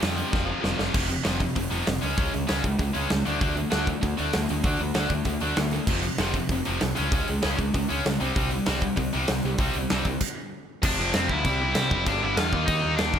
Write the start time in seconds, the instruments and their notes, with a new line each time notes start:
0.01 distorted electric guitar F2 C3 F3, picked electric bass F2, snare, open hi-hat
0.16 distorted electric guitar F2 C3 F3, open hi-hat
0.31 picked electric bass F1, distorted electric guitar F2 C3 F3, kick, snare
0.46 distorted electric guitar F2 C3 F3
0.60 picked electric bass F1, distorted electric guitar F2 C3 F3, snare
0.78 picked electric bass F1, distorted electric guitar F2 C3 F3, snare
0.94 picked electric bass F1, distorted electric guitar F2 C3 F3, kick, crash
1.09 distorted electric guitar F2 C3, open hi-hat
1.23 picked electric bass F1, distorted electric guitar F2 C3 F3, snare, open hi-hat
1.40 distorted electric guitar F2 C3, kick, open hi-hat
1.55 picked electric bass F1, distorted electric guitar F2 C3, kick, open hi-hat
1.70 picked electric bass F1, distorted electric guitar F2 C3 F3, open hi-hat
1.86 picked electric bass F1, distorted electric guitar F2 C3, snare, open hi-hat
2.01 picked electric bass C#2, distorted electric guitar C#3 G#3 C#4, open hi-hat
2.16 picked electric bass C#2, distorted electric guitar C#3 G#3 C#4, kick, open hi-hat
2.32 picked electric bass C#2, distorted electric guitar C#3 G#3, open hi-hat
2.47 picked electric bass C#2, distorted electric guitar C#3 G#3 C#4, snare, open hi-hat
2.63 picked electric bass C#2, distorted electric guitar C#3 G#3, kick, open hi-hat
2.79 picked electric bass C#2, distorted electric guitar C#3 G#3, kick, open hi-hat
2.93 picked electric bass C#2, distorted electric guitar C#3 G#3 C#4, open hi-hat
3.10 picked electric bass C#2, distorted electric guitar C#3 G#3, snare, open hi-hat
3.25 picked electric bass D2, distorted electric guitar D3 A3 D4, open hi-hat
3.40 picked electric bass D2, distorted electric guitar D3 A3 D4, kick, open hi-hat
3.56 distorted electric guitar D3 A3, open hi-hat
3.71 picked electric bass D2, distorted electric guitar D3 A3 D4, snare, open hi-hat
3.87 distorted electric guitar D3 A3, kick, open hi-hat
4.02 picked electric bass D2, distorted electric guitar D3 A3, kick, open hi-hat
4.18 picked electric bass D2, distorted electric guitar D3 A3 D4, open hi-hat
4.33 picked electric bass D2, distorted electric guitar D3 A3, snare, open hi-hat
4.49 picked electric bass D2, distorted electric guitar D3 A3, open hi-hat
4.64 picked electric bass D2, distorted electric guitar D3 A3 D4, kick, open hi-hat
4.79 picked electric bass D2, distorted electric guitar D3 A3, open hi-hat
4.95 picked electric bass D2, distorted electric guitar D3 A3 D4, snare, open hi-hat
5.09 picked electric bass D2, distorted electric guitar D3 A3, kick, open hi-hat
5.25 picked electric bass D2, distorted electric guitar D3 A3, kick, open hi-hat
5.40 picked electric bass D2, distorted electric guitar D3 A3 D4, open hi-hat
5.56 picked electric bass D2, distorted electric guitar D3 A3, snare, open hi-hat
5.71 distorted electric guitar D3 A3, open hi-hat
5.87 picked electric bass F1, distorted electric guitar F2 C3 F3, kick, crash
6.02 distorted electric guitar F2 C3, open hi-hat
6.18 picked electric bass F1, distorted electric guitar F2 C3 F3, snare, open hi-hat
6.34 distorted electric guitar F2 C3, kick, open hi-hat
6.49 picked electric bass F1, distorted electric guitar F2 C3, kick, open hi-hat
6.65 picked electric bass F1, distorted electric guitar F2 C3 F3, open hi-hat
6.80 picked electric bass C2, distorted electric guitar F2 C3, snare, open hi-hat
6.95 picked electric bass C#2, distorted electric guitar C#3 G#3 C#4, open hi-hat
7.12 picked electric bass C#2, distorted electric guitar C#3 G#3 C#4, kick, open hi-hat
7.28 picked electric bass C#2, distorted electric guitar C#3 G#3, open hi-hat
7.42 picked electric bass C#2, distorted electric guitar C#3 G#3 C#4, snare, open hi-hat
7.58 picked electric bass C#2, distorted electric guitar C#3 G#3, kick, open hi-hat
7.74 picked electric bass C#2, distorted electric guitar C#3 G#3, kick, open hi-hat
7.89 picked electric bass C#2, distorted electric guitar C#3 G#3 C#4, open hi-hat
8.04 picked electric bass C#2, distorted electric guitar C#3 G#3, snare, open hi-hat
8.20 picked electric bass C2, distorted electric guitar C3 G3 C4, open hi-hat
8.35 picked electric bass C2, distorted electric guitar C3 G3 C4, kick, open hi-hat
8.50 distorted electric guitar C3 G3, open hi-hat
8.66 picked electric bass C2, distorted electric guitar C3 G3 C4, snare, open hi-hat
8.81 distorted electric guitar C3 G3, kick, open hi-hat
8.96 picked electric bass C2, distorted electric guitar C3 G3, kick, open hi-hat
9.13 picked electric bass C2, distorted electric guitar C3 G3 C4, open hi-hat
9.28 picked electric bass C2, distorted electric guitar C3 G3, snare, open hi-hat
9.43 picked electric bass C2, distorted electric guitar C3 G3, open hi-hat
9.58 picked electric bass C2, distorted electric guitar C3 G3 C4, kick, open hi-hat
9.74 picked electric bass C2, distorted electric guitar C3 G3, open hi-hat
9.90 picked electric bass C2, distorted electric guitar C3 G3 C4, snare, open hi-hat
10.05 picked electric bass C2, distorted electric guitar C3 G3, kick, open hi-hat
10.20 kick, crash
10.82 picked electric bass F1, distorted electric guitar F2 C3 F3, overdriven electric guitar D4, kick, crash
10.99 picked electric bass F1, distorted electric guitar F2 C3 F3
11.14 picked electric bass F1, distorted electric guitar F2 C3 F3, overdriven electric guitar C4, snare, crash
11.28 picked electric bass D2, distorted electric guitar F3, overdriven electric guitar E4, kick
11.32 distorted electric guitar F2 C3
11.45 picked electric bass C2, distorted electric guitar C3 G3 C4, kick, crash
11.60 distorted electric guitar C3 G3 C4
11.73 picked electric bass C2, distorted electric guitar C3 G3 C4, overdriven electric guitar E4, snare, crash
11.91 picked electric bass F1, distorted electric guitar C3 G3 C4, kick
12.06 picked electric bass G1, distorted electric guitar G2 D3 G3, overdriven electric guitar D4, kick, crash
12.22 picked electric bass G1, distorted electric guitar G2 D3 G3, overdriven electric guitar E4
12.37 picked electric bass E2, distorted electric guitar G2 D3 G3, overdriven electric guitar F4, snare, crash
12.52 picked electric bass D#2, distorted electric guitar D#3 A#3 D#4, kick
12.66 picked electric bass D#2, distorted electric guitar D#3 A#3 D#4, overdriven electric guitar D#4, kick, crash
12.82 picked electric bass D#2, distorted electric guitar D#3 A#3 D#4
12.97 picked electric bass D#2, distorted electric guitar D#3 A#3 D#4, overdriven electric guitar D4, snare, crash
13.12 picked electric bass D#2, distorted electric guitar D#3 A#3 D#4, kick